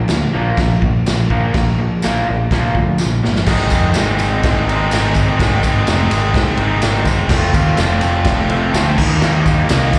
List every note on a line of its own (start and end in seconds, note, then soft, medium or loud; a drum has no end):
0.08 0.26 D2 loud
0.08 0.32 A#2 medium
0.08 0.32 F3 medium
0.08 snare loud
0.08 tambourine medium
0.08 crash medium
0.33 0.51 A#1 medium
0.33 0.56 A#2 medium
0.33 0.57 F3 loud
0.33 0.57 A#3 loud
0.57 0.75 A#1 loud
0.57 0.80 A#2 medium
0.57 0.80 F3 medium
0.57 kick loud
0.57 snare loud
0.57 crash medium
0.82 0.99 A#1 medium
0.82 1.03 A#2 medium
0.82 1.03 F3 medium
0.82 kick medium
1.06 1.25 A#1 medium
1.06 1.28 A#2 medium
1.06 1.28 F3 medium
1.06 snare loud
1.06 tambourine medium
1.06 crash medium
1.30 1.47 A#1 medium
1.30 1.53 A#2 loud
1.30 1.53 F3 loud
1.30 1.53 A#3 loud
1.30 kick medium
1.54 1.88 A#1 medium
1.54 1.76 A#2 medium
1.54 1.76 F3 medium
1.54 kick loud
1.54 snare loud
1.54 crash medium
1.79 2.00 A#2 medium
1.79 2.00 F3 medium
2.02 2.21 A#1 medium
2.02 2.25 A#2 loud
2.02 2.26 F3 loud
2.02 2.26 A#3 loud
2.02 snare loud
2.02 tambourine loud
2.02 crash medium
2.27 2.46 A#1 loud
2.27 2.49 A#2 medium
2.27 2.49 F3 medium
2.51 2.69 A#1 medium
2.51 2.74 A#2 loud
2.51 2.74 F3 loud
2.51 2.75 A#3 medium
2.51 kick loud
2.51 snare loud
2.51 crash medium
2.75 2.92 D2 medium
2.75 2.97 A#2 medium
2.75 2.97 F3 medium
2.75 kick medium
2.98 3.20 A#2 medium
2.98 3.21 F3 medium
2.98 snare medium
2.98 tambourine loud
3.05 3.20 A#1 medium
3.23 3.42 G1 medium
3.23 3.45 A#2 medium
3.23 3.45 F3 medium
3.23 snare medium
3.36 snare medium
3.46 3.69 G#1 medium
3.46 4.92 G#2 medium
3.46 3.95 D#3 medium
3.46 3.75 G#3 medium
3.46 3.73 C4 medium
3.46 3.71 D#4 loud
3.46 kick loud
3.46 snare loud
3.46 crash loud
3.46 tambourine medium
3.70 3.94 F2 medium
3.70 3.99 C4 medium
3.70 4.00 D#4 medium
3.70 kick medium
3.70 ride medium
3.70 tambourine medium
3.75 3.97 G#3 medium
3.94 4.92 D#3 medium
3.94 4.71 G#3 medium
3.94 snare loud
3.94 ride loud
3.94 tambourine loud
3.99 4.20 G#1 loud
3.99 4.71 C4 medium
3.99 4.68 D#4 loud
4.19 ride medium
4.19 tambourine medium
4.23 4.43 G#1 medium
4.43 4.88 G#1 medium
4.43 kick loud
4.43 snare loud
4.43 ride loud
4.43 tambourine soft
4.69 4.93 G#3 medium
4.69 4.95 C4 medium
4.69 4.95 D#4 medium
4.69 ride medium
4.91 5.14 G#1 medium
4.91 5.38 G#2 loud
4.91 5.39 D#3 medium
4.91 5.20 G#3 medium
4.91 snare loud
4.91 ride loud
4.91 tambourine loud
4.95 5.18 C4 medium
4.95 5.15 D#4 loud
5.14 5.38 G#1 medium
5.14 5.41 D#4 medium
5.14 kick medium
5.14 ride medium
5.14 tambourine medium
5.19 5.39 G#3 medium
5.19 5.42 C4 medium
5.39 5.84 G#1 medium
5.39 5.87 G#2 medium
5.39 5.86 D#3 medium
5.39 5.68 G#3 medium
5.39 5.67 C4 medium
5.39 5.63 D#4 medium
5.39 kick loud
5.39 snare loud
5.39 ride loud
5.39 tambourine medium
5.63 5.90 C4 medium
5.63 5.90 D#4 medium
5.63 kick medium
5.63 ride medium
5.63 tambourine medium
5.69 5.88 G#3 medium
5.87 6.09 F1 loud
5.87 6.81 D#3 medium
5.87 6.61 G#3 medium
5.87 6.59 C4 medium
5.87 snare loud
5.87 ride loud
5.87 tambourine medium
5.91 6.58 D#4 medium
6.11 6.32 G#1 loud
6.11 ride medium
6.11 tambourine medium
6.34 6.57 G#2 loud
6.34 kick loud
6.34 snare loud
6.34 ride loud
6.34 tambourine soft
6.57 6.80 G#1 medium
6.57 6.83 C4 medium
6.57 6.85 D#4 medium
6.57 ride medium
6.63 6.83 G#3 medium
6.81 7.05 G#1 medium
6.81 7.28 G#2 medium
6.81 7.29 D#3 loud
6.81 7.09 G#3 loud
6.81 7.07 C4 loud
6.81 snare loud
6.81 ride loud
6.81 tambourine loud
6.86 7.04 D#4 medium
7.05 7.28 E1 medium
7.05 7.30 C4 medium
7.05 7.28 D#4 medium
7.05 kick medium
7.05 ride medium
7.05 tambourine medium
7.10 7.31 G#3 medium
7.29 7.52 F1 loud
7.29 7.77 F3 medium
7.29 7.56 A3 medium
7.29 7.55 C4 loud
7.29 kick loud
7.29 snare loud
7.29 tambourine medium
7.29 crash loud
7.34 7.53 F4 loud
7.54 7.76 D#2 medium
7.54 7.79 A3 medium
7.54 7.80 C4 medium
7.54 7.81 F4 loud
7.54 kick medium
7.54 ride medium
7.54 tambourine medium
7.77 8.00 F1 medium
7.77 8.71 F3 medium
7.77 8.51 A3 medium
7.77 snare loud
7.77 ride loud
7.77 tambourine medium
7.81 8.49 C4 medium
7.81 8.47 F4 loud
8.01 8.24 F1 medium
8.01 ride medium
8.01 tambourine medium
8.25 8.70 F1 loud
8.25 kick loud
8.25 snare loud
8.25 ride loud
8.25 tambourine soft
8.48 8.73 A3 medium
8.48 8.74 C4 medium
8.48 8.76 F4 medium
8.48 ride medium
8.73 8.96 D2 medium
8.73 8.96 F3 medium
8.73 8.96 A3 medium
8.73 8.97 C4 loud
8.73 snare loud
8.73 ride loud
8.73 tambourine medium
8.77 8.95 F4 medium
8.96 9.22 G3 medium
8.96 9.24 A#3 loud
8.96 9.25 D#4 loud
8.96 kick loud
8.96 tambourine medium
8.96 crash loud
9.00 9.20 D#2 medium
9.00 9.20 D#3 medium
9.21 9.65 D#2 loud
9.21 9.66 D#3 medium
9.21 9.49 G3 medium
9.21 9.47 A#3 loud
9.21 snare loud
9.21 tambourine medium
9.26 9.45 D#4 loud
9.45 9.69 A#3 medium
9.45 9.71 D#4 medium
9.45 kick medium
9.45 ride medium
9.45 tambourine medium
9.50 9.67 G3 medium
9.67 9.91 C2 medium
9.67 9.99 D#3 medium
9.67 9.99 G3 medium
9.67 9.99 A#3 medium
9.67 snare loud
9.67 ride loud
9.67 tambourine loud
9.71 9.99 D#4 medium
9.93 9.99 D#2 loud
9.93 kick medium
9.93 ride medium
9.93 tambourine medium